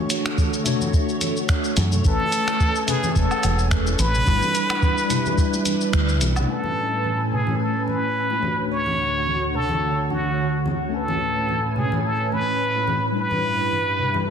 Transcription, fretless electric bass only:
1.77 F#2
2.05 A1
3.16 E1
3.44 E1
3.99 A1
4.27 G1
5.93 D2
6.21 B1

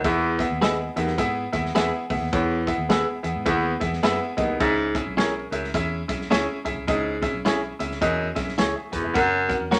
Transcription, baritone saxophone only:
0.04 E2
0.96 D#2
2.33 E2
3.46 E2
4.38 D#2
4.60 G#2
5.51 F#2
6.88 G#2
8.02 F#2
8.93 E2
9.15 F#2

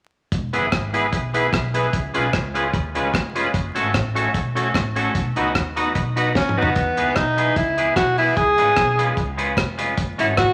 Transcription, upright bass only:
0.32 E1
0.53 F#1
0.72 G#1
1.13 B1
1.53 B1
1.93 C#2
2.15 B1
2.34 C#2
2.74 D#2
2.96 C#2
3.14 F1
3.54 F#1
3.76 G#1
3.94 A1
4.35 B1
4.75 A1
5.15 B1
5.37 C#2
5.55 D#2
5.95 B1
6.76 E2
6.98 C#2
7.16 B1
7.56 C#2
7.96 B1
8.37 C#2
8.59 A1
8.77 B1
9.17 C#2
9.57 F1
9.98 F#1
10.19 G#1
10.38 A1

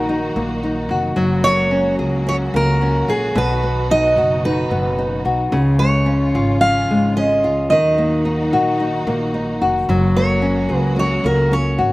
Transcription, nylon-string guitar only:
Already playing: D#3 A#3 F#4
0.09 D#4
0.36 A#3
0.63 D#4
0.91 F#4
1.16 F#3
1.44 A#3
1.71 C#4
1.99 G#4
2.27 C#4
2.54 A#3
2.81 C#4
3.09 G#4
3.35 B2
3.63 B3
3.91 D#4
4.18 F#4
4.45 D#4
4.71 B3
4.99 D#4
5.25 F#4
5.52 C#3
5.79 G#3
6.06 C#4
6.35 F4
6.62 C#4
6.91 G#3
7.17 C#4
7.44 F4
7.72 D#3
7.98 A#3
8.25 D#4
8.53 F#4
8.80 D#4
9.07 A#3
9.34 D#4
9.62 F#4
9.89 F#3
10.16 A#3
10.42 C#4
10.69 G#4
10.96 C#4
11.24 A#3
11.52 C#4
11.79 F#4

